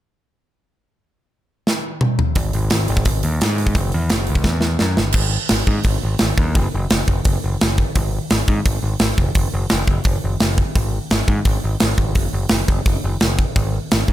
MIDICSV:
0, 0, Header, 1, 3, 480
1, 0, Start_track
1, 0, Tempo, 350058
1, 1315, Time_signature, 4, 2, 24, 8
1, 19371, End_track
2, 0, Start_track
2, 0, Title_t, "Picked electric bass"
2, 0, Program_c, 0, 34
2, 3238, Note_on_c, 0, 32, 83
2, 3448, Note_off_c, 0, 32, 0
2, 3479, Note_on_c, 0, 32, 85
2, 3689, Note_off_c, 0, 32, 0
2, 3725, Note_on_c, 0, 32, 88
2, 3932, Note_off_c, 0, 32, 0
2, 3966, Note_on_c, 0, 32, 85
2, 4172, Note_off_c, 0, 32, 0
2, 4200, Note_on_c, 0, 32, 73
2, 4409, Note_off_c, 0, 32, 0
2, 4439, Note_on_c, 0, 39, 83
2, 4649, Note_off_c, 0, 39, 0
2, 4690, Note_on_c, 0, 44, 89
2, 5107, Note_off_c, 0, 44, 0
2, 5145, Note_on_c, 0, 30, 94
2, 5361, Note_off_c, 0, 30, 0
2, 5406, Note_on_c, 0, 40, 95
2, 5613, Note_off_c, 0, 40, 0
2, 5643, Note_on_c, 0, 30, 84
2, 5851, Note_off_c, 0, 30, 0
2, 5886, Note_on_c, 0, 37, 86
2, 6086, Note_off_c, 0, 37, 0
2, 6094, Note_on_c, 0, 40, 77
2, 6526, Note_off_c, 0, 40, 0
2, 6590, Note_on_c, 0, 42, 82
2, 6804, Note_off_c, 0, 42, 0
2, 6828, Note_on_c, 0, 31, 84
2, 7043, Note_off_c, 0, 31, 0
2, 7058, Note_on_c, 0, 32, 96
2, 7357, Note_off_c, 0, 32, 0
2, 7555, Note_on_c, 0, 32, 90
2, 7702, Note_off_c, 0, 32, 0
2, 7776, Note_on_c, 0, 44, 87
2, 7929, Note_off_c, 0, 44, 0
2, 8026, Note_on_c, 0, 32, 79
2, 8176, Note_off_c, 0, 32, 0
2, 8275, Note_on_c, 0, 32, 73
2, 8422, Note_off_c, 0, 32, 0
2, 8518, Note_on_c, 0, 32, 90
2, 8665, Note_off_c, 0, 32, 0
2, 8749, Note_on_c, 0, 39, 89
2, 8990, Note_on_c, 0, 30, 99
2, 9011, Note_off_c, 0, 39, 0
2, 9139, Note_off_c, 0, 30, 0
2, 9248, Note_on_c, 0, 30, 94
2, 9391, Note_off_c, 0, 30, 0
2, 9477, Note_on_c, 0, 30, 84
2, 9624, Note_off_c, 0, 30, 0
2, 9703, Note_on_c, 0, 30, 86
2, 9854, Note_off_c, 0, 30, 0
2, 9945, Note_on_c, 0, 30, 83
2, 10096, Note_off_c, 0, 30, 0
2, 10204, Note_on_c, 0, 30, 71
2, 10348, Note_off_c, 0, 30, 0
2, 10442, Note_on_c, 0, 30, 94
2, 10734, Note_off_c, 0, 30, 0
2, 10915, Note_on_c, 0, 32, 102
2, 11209, Note_off_c, 0, 32, 0
2, 11398, Note_on_c, 0, 32, 91
2, 11545, Note_off_c, 0, 32, 0
2, 11629, Note_on_c, 0, 44, 90
2, 11779, Note_off_c, 0, 44, 0
2, 11873, Note_on_c, 0, 32, 73
2, 12021, Note_off_c, 0, 32, 0
2, 12102, Note_on_c, 0, 32, 79
2, 12253, Note_off_c, 0, 32, 0
2, 12346, Note_on_c, 0, 32, 87
2, 12497, Note_off_c, 0, 32, 0
2, 12584, Note_on_c, 0, 29, 83
2, 12735, Note_off_c, 0, 29, 0
2, 12829, Note_on_c, 0, 30, 89
2, 12978, Note_off_c, 0, 30, 0
2, 13077, Note_on_c, 0, 30, 91
2, 13224, Note_off_c, 0, 30, 0
2, 13330, Note_on_c, 0, 30, 87
2, 13473, Note_off_c, 0, 30, 0
2, 13543, Note_on_c, 0, 30, 85
2, 13694, Note_off_c, 0, 30, 0
2, 13787, Note_on_c, 0, 30, 87
2, 13937, Note_off_c, 0, 30, 0
2, 14042, Note_on_c, 0, 30, 83
2, 14187, Note_off_c, 0, 30, 0
2, 14264, Note_on_c, 0, 30, 85
2, 14562, Note_off_c, 0, 30, 0
2, 14751, Note_on_c, 0, 32, 93
2, 15047, Note_off_c, 0, 32, 0
2, 15234, Note_on_c, 0, 32, 95
2, 15382, Note_off_c, 0, 32, 0
2, 15467, Note_on_c, 0, 44, 94
2, 15617, Note_off_c, 0, 44, 0
2, 15716, Note_on_c, 0, 32, 84
2, 15863, Note_off_c, 0, 32, 0
2, 15962, Note_on_c, 0, 32, 76
2, 16107, Note_off_c, 0, 32, 0
2, 16210, Note_on_c, 0, 32, 83
2, 16353, Note_off_c, 0, 32, 0
2, 16425, Note_on_c, 0, 32, 83
2, 16666, Note_off_c, 0, 32, 0
2, 16666, Note_on_c, 0, 30, 91
2, 16816, Note_off_c, 0, 30, 0
2, 16911, Note_on_c, 0, 30, 80
2, 17059, Note_off_c, 0, 30, 0
2, 17152, Note_on_c, 0, 30, 92
2, 17300, Note_off_c, 0, 30, 0
2, 17395, Note_on_c, 0, 30, 87
2, 17542, Note_off_c, 0, 30, 0
2, 17635, Note_on_c, 0, 30, 73
2, 17782, Note_off_c, 0, 30, 0
2, 17885, Note_on_c, 0, 30, 84
2, 18028, Note_off_c, 0, 30, 0
2, 18121, Note_on_c, 0, 30, 85
2, 18412, Note_off_c, 0, 30, 0
2, 18593, Note_on_c, 0, 32, 95
2, 18887, Note_off_c, 0, 32, 0
2, 19096, Note_on_c, 0, 32, 91
2, 19236, Note_off_c, 0, 32, 0
2, 19308, Note_on_c, 0, 44, 85
2, 19371, Note_off_c, 0, 44, 0
2, 19371, End_track
3, 0, Start_track
3, 0, Title_t, "Drums"
3, 2289, Note_on_c, 9, 38, 65
3, 2426, Note_off_c, 9, 38, 0
3, 2754, Note_on_c, 9, 47, 86
3, 2892, Note_off_c, 9, 47, 0
3, 3000, Note_on_c, 9, 43, 90
3, 3137, Note_off_c, 9, 43, 0
3, 3228, Note_on_c, 9, 46, 75
3, 3233, Note_on_c, 9, 36, 107
3, 3365, Note_off_c, 9, 46, 0
3, 3370, Note_off_c, 9, 36, 0
3, 3474, Note_on_c, 9, 46, 55
3, 3611, Note_off_c, 9, 46, 0
3, 3704, Note_on_c, 9, 46, 75
3, 3712, Note_on_c, 9, 38, 108
3, 3841, Note_off_c, 9, 46, 0
3, 3849, Note_off_c, 9, 38, 0
3, 3950, Note_on_c, 9, 46, 57
3, 4070, Note_on_c, 9, 36, 80
3, 4088, Note_off_c, 9, 46, 0
3, 4186, Note_on_c, 9, 46, 84
3, 4191, Note_off_c, 9, 36, 0
3, 4191, Note_on_c, 9, 36, 95
3, 4323, Note_off_c, 9, 46, 0
3, 4328, Note_off_c, 9, 36, 0
3, 4429, Note_on_c, 9, 46, 61
3, 4566, Note_off_c, 9, 46, 0
3, 4677, Note_on_c, 9, 46, 75
3, 4685, Note_on_c, 9, 38, 102
3, 4814, Note_off_c, 9, 46, 0
3, 4822, Note_off_c, 9, 38, 0
3, 4912, Note_on_c, 9, 46, 56
3, 5027, Note_on_c, 9, 36, 84
3, 5049, Note_off_c, 9, 46, 0
3, 5142, Note_off_c, 9, 36, 0
3, 5142, Note_on_c, 9, 36, 100
3, 5143, Note_on_c, 9, 46, 68
3, 5279, Note_off_c, 9, 36, 0
3, 5280, Note_off_c, 9, 46, 0
3, 5373, Note_on_c, 9, 46, 54
3, 5510, Note_off_c, 9, 46, 0
3, 5616, Note_on_c, 9, 46, 63
3, 5624, Note_on_c, 9, 38, 102
3, 5753, Note_off_c, 9, 46, 0
3, 5761, Note_off_c, 9, 38, 0
3, 5851, Note_on_c, 9, 46, 55
3, 5970, Note_on_c, 9, 36, 92
3, 5988, Note_off_c, 9, 46, 0
3, 6086, Note_on_c, 9, 38, 66
3, 6091, Note_off_c, 9, 36, 0
3, 6091, Note_on_c, 9, 36, 93
3, 6223, Note_off_c, 9, 38, 0
3, 6228, Note_off_c, 9, 36, 0
3, 6317, Note_on_c, 9, 38, 58
3, 6454, Note_off_c, 9, 38, 0
3, 6569, Note_on_c, 9, 38, 82
3, 6706, Note_off_c, 9, 38, 0
3, 6816, Note_on_c, 9, 38, 90
3, 6953, Note_off_c, 9, 38, 0
3, 7027, Note_on_c, 9, 49, 108
3, 7050, Note_on_c, 9, 36, 102
3, 7164, Note_off_c, 9, 49, 0
3, 7187, Note_off_c, 9, 36, 0
3, 7523, Note_on_c, 9, 46, 56
3, 7531, Note_on_c, 9, 38, 105
3, 7660, Note_off_c, 9, 46, 0
3, 7669, Note_off_c, 9, 38, 0
3, 7776, Note_on_c, 9, 36, 86
3, 7913, Note_off_c, 9, 36, 0
3, 8001, Note_on_c, 9, 46, 64
3, 8017, Note_on_c, 9, 36, 108
3, 8138, Note_off_c, 9, 46, 0
3, 8154, Note_off_c, 9, 36, 0
3, 8482, Note_on_c, 9, 46, 52
3, 8490, Note_on_c, 9, 38, 102
3, 8619, Note_off_c, 9, 46, 0
3, 8627, Note_off_c, 9, 38, 0
3, 8743, Note_on_c, 9, 36, 86
3, 8880, Note_off_c, 9, 36, 0
3, 8980, Note_on_c, 9, 46, 54
3, 8985, Note_on_c, 9, 36, 115
3, 9117, Note_off_c, 9, 46, 0
3, 9122, Note_off_c, 9, 36, 0
3, 9462, Note_on_c, 9, 46, 49
3, 9470, Note_on_c, 9, 38, 103
3, 9599, Note_off_c, 9, 46, 0
3, 9607, Note_off_c, 9, 38, 0
3, 9706, Note_on_c, 9, 36, 87
3, 9843, Note_off_c, 9, 36, 0
3, 9935, Note_on_c, 9, 46, 55
3, 9945, Note_on_c, 9, 36, 109
3, 10072, Note_off_c, 9, 46, 0
3, 10082, Note_off_c, 9, 36, 0
3, 10432, Note_on_c, 9, 46, 55
3, 10441, Note_on_c, 9, 38, 106
3, 10569, Note_off_c, 9, 46, 0
3, 10578, Note_off_c, 9, 38, 0
3, 10669, Note_on_c, 9, 36, 85
3, 10806, Note_off_c, 9, 36, 0
3, 10906, Note_on_c, 9, 46, 53
3, 10910, Note_on_c, 9, 36, 109
3, 11043, Note_off_c, 9, 46, 0
3, 11047, Note_off_c, 9, 36, 0
3, 11382, Note_on_c, 9, 46, 51
3, 11390, Note_on_c, 9, 38, 93
3, 11519, Note_off_c, 9, 46, 0
3, 11527, Note_off_c, 9, 38, 0
3, 11627, Note_on_c, 9, 36, 91
3, 11764, Note_off_c, 9, 36, 0
3, 11869, Note_on_c, 9, 36, 105
3, 11870, Note_on_c, 9, 46, 64
3, 12006, Note_off_c, 9, 36, 0
3, 12007, Note_off_c, 9, 46, 0
3, 12331, Note_on_c, 9, 46, 57
3, 12339, Note_on_c, 9, 38, 101
3, 12468, Note_off_c, 9, 46, 0
3, 12476, Note_off_c, 9, 38, 0
3, 12587, Note_on_c, 9, 36, 82
3, 12724, Note_off_c, 9, 36, 0
3, 12816, Note_on_c, 9, 46, 59
3, 12825, Note_on_c, 9, 36, 97
3, 12953, Note_off_c, 9, 46, 0
3, 12962, Note_off_c, 9, 36, 0
3, 13292, Note_on_c, 9, 46, 51
3, 13300, Note_on_c, 9, 38, 104
3, 13429, Note_off_c, 9, 46, 0
3, 13437, Note_off_c, 9, 38, 0
3, 13541, Note_on_c, 9, 36, 80
3, 13678, Note_off_c, 9, 36, 0
3, 13763, Note_on_c, 9, 46, 54
3, 13782, Note_on_c, 9, 36, 105
3, 13900, Note_off_c, 9, 46, 0
3, 13919, Note_off_c, 9, 36, 0
3, 14258, Note_on_c, 9, 46, 46
3, 14267, Note_on_c, 9, 38, 101
3, 14396, Note_off_c, 9, 46, 0
3, 14404, Note_off_c, 9, 38, 0
3, 14506, Note_on_c, 9, 36, 86
3, 14643, Note_off_c, 9, 36, 0
3, 14747, Note_on_c, 9, 36, 104
3, 14752, Note_on_c, 9, 46, 48
3, 14885, Note_off_c, 9, 36, 0
3, 14889, Note_off_c, 9, 46, 0
3, 15227, Note_on_c, 9, 46, 51
3, 15235, Note_on_c, 9, 38, 98
3, 15364, Note_off_c, 9, 46, 0
3, 15372, Note_off_c, 9, 38, 0
3, 15466, Note_on_c, 9, 36, 89
3, 15603, Note_off_c, 9, 36, 0
3, 15700, Note_on_c, 9, 46, 60
3, 15705, Note_on_c, 9, 36, 116
3, 15837, Note_off_c, 9, 46, 0
3, 15842, Note_off_c, 9, 36, 0
3, 16177, Note_on_c, 9, 46, 60
3, 16185, Note_on_c, 9, 38, 111
3, 16314, Note_off_c, 9, 46, 0
3, 16323, Note_off_c, 9, 38, 0
3, 16426, Note_on_c, 9, 36, 89
3, 16563, Note_off_c, 9, 36, 0
3, 16659, Note_on_c, 9, 46, 61
3, 16667, Note_on_c, 9, 36, 101
3, 16796, Note_off_c, 9, 46, 0
3, 16804, Note_off_c, 9, 36, 0
3, 17124, Note_on_c, 9, 46, 54
3, 17133, Note_on_c, 9, 38, 105
3, 17262, Note_off_c, 9, 46, 0
3, 17270, Note_off_c, 9, 38, 0
3, 17392, Note_on_c, 9, 36, 90
3, 17529, Note_off_c, 9, 36, 0
3, 17632, Note_on_c, 9, 36, 109
3, 17636, Note_on_c, 9, 46, 56
3, 17769, Note_off_c, 9, 36, 0
3, 17773, Note_off_c, 9, 46, 0
3, 18104, Note_on_c, 9, 46, 52
3, 18112, Note_on_c, 9, 38, 103
3, 18241, Note_off_c, 9, 46, 0
3, 18250, Note_off_c, 9, 38, 0
3, 18355, Note_on_c, 9, 36, 85
3, 18492, Note_off_c, 9, 36, 0
3, 18593, Note_on_c, 9, 36, 112
3, 18595, Note_on_c, 9, 46, 47
3, 18730, Note_off_c, 9, 36, 0
3, 18732, Note_off_c, 9, 46, 0
3, 19075, Note_on_c, 9, 46, 52
3, 19083, Note_on_c, 9, 38, 115
3, 19212, Note_off_c, 9, 46, 0
3, 19220, Note_off_c, 9, 38, 0
3, 19311, Note_on_c, 9, 36, 87
3, 19371, Note_off_c, 9, 36, 0
3, 19371, End_track
0, 0, End_of_file